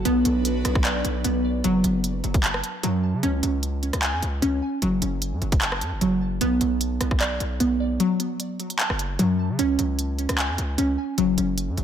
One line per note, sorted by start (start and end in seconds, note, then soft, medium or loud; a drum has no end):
0.05 0.24 B1 loud
0.05 1.63 F#3 medium
0.05 1.23 B3 loud
0.05 1.63 D4 medium
0.05 1.63 B4 medium
0.05 closed hi-hat medium
0.25 0.63 B1 loud
0.25 closed hi-hat medium
0.45 closed hi-hat medium
0.65 1.03 B1 loud
0.65 cross-stick medium
0.65 closed hi-hat medium
0.75 kick medium
0.75 cross-stick medium
0.85 1.64 D5 loud
0.85 clap loud
0.85 closed hi-hat medium
1.05 1.24 B1 loud
1.05 closed hi-hat medium
1.24 1.63 B1 loud
1.24 1.64 B3 medium
1.24 closed hi-hat medium
1.64 1.83 F#1 loud
1.64 2.82 F#3 loud
1.64 closed hi-hat medium
1.84 2.22 F#1 loud
1.84 closed hi-hat medium
2.04 closed hi-hat medium
2.24 2.62 F#1 loud
2.24 closed hi-hat soft
2.34 kick medium
2.34 closed hi-hat medium
2.44 3.23 A5 loud
2.44 clap loud
2.44 closed hi-hat medium
2.54 cross-stick loud
2.64 closed hi-hat medium
2.83 3.15 F#2 loud
2.83 3.23 F#3 medium
2.83 closed hi-hat medium
3.14 3.23 C#3 loud
3.23 3.42 C#2 loud
3.23 4.41 C#4 medium
3.23 closed hi-hat medium
3.43 3.91 C#2 loud
3.43 closed hi-hat medium
3.63 closed hi-hat medium
3.83 closed hi-hat soft
3.93 4.15 C#2 loud
3.93 cross-stick medium
3.93 closed hi-hat medium
4.03 4.82 G#5 loud
4.03 clap loud
4.03 closed hi-hat medium
4.13 4.22 F2 loud
4.22 4.42 C#2 loud
4.22 closed hi-hat medium
4.42 4.61 C#2 loud
4.42 4.82 C#4 medium
4.42 closed hi-hat medium
4.82 5.01 F#1 loud
4.82 6.00 F#3 medium
4.82 closed hi-hat medium
5.02 5.34 F#1 loud
5.02 closed hi-hat medium
5.22 closed hi-hat medium
5.32 5.41 F#2 loud
5.42 5.83 F#1 loud
5.42 closed hi-hat soft
5.52 kick medium
5.52 closed hi-hat medium
5.61 6.41 A5 loud
5.61 clap loud
5.61 closed hi-hat medium
5.72 cross-stick loud
5.81 5.93 F#2 loud
5.81 closed hi-hat medium
5.92 6.01 F#1 loud
6.01 6.39 F#1 loud
6.01 6.41 F#3 medium
6.01 closed hi-hat medium
6.41 6.60 B1 loud
6.41 7.59 B3 loud
6.41 closed hi-hat medium
6.61 6.99 B1 loud
6.61 closed hi-hat medium
6.81 closed hi-hat medium
7.01 7.39 B1 loud
7.01 cross-stick medium
7.01 closed hi-hat medium
7.11 kick medium
7.11 cross-stick medium
7.20 8.00 D5 loud
7.20 clap loud
7.20 closed hi-hat medium
7.40 7.59 B1 loud
7.40 closed hi-hat medium
7.60 7.98 B1 loud
7.60 8.00 B3 medium
7.60 closed hi-hat medium
8.00 9.18 F#3 loud
8.00 closed hi-hat medium
8.20 closed hi-hat medium
8.40 closed hi-hat medium
8.60 closed hi-hat soft
8.70 closed hi-hat medium
8.79 9.59 A5 loud
8.79 clap loud
8.79 closed hi-hat medium
8.90 9.18 F#1 loud
8.90 cross-stick medium
8.99 closed hi-hat medium
9.19 9.51 F#2 loud
9.19 9.59 F#3 medium
9.19 closed hi-hat medium
9.50 9.58 C#3 loud
9.59 9.78 C#2 loud
9.59 10.77 C#4 loud
9.59 closed hi-hat medium
9.79 10.27 C#2 loud
9.79 closed hi-hat medium
9.99 closed hi-hat medium
10.19 closed hi-hat soft
10.29 10.50 C#2 loud
10.29 cross-stick medium
10.29 closed hi-hat medium
10.38 11.18 G#5 loud
10.38 clap loud
10.38 closed hi-hat medium
10.49 10.58 F2 loud
10.58 10.77 C#2 loud
10.58 closed hi-hat medium
10.78 10.97 C#2 loud
10.78 11.18 C#4 medium
10.78 closed hi-hat medium
11.18 11.37 F#1 loud
11.18 11.84 F#3 medium
11.18 closed hi-hat medium
11.38 11.70 F#1 loud
11.38 closed hi-hat medium
11.58 closed hi-hat medium
11.68 11.77 F#2 loud
11.77 11.84 F#1 loud
11.77 closed hi-hat soft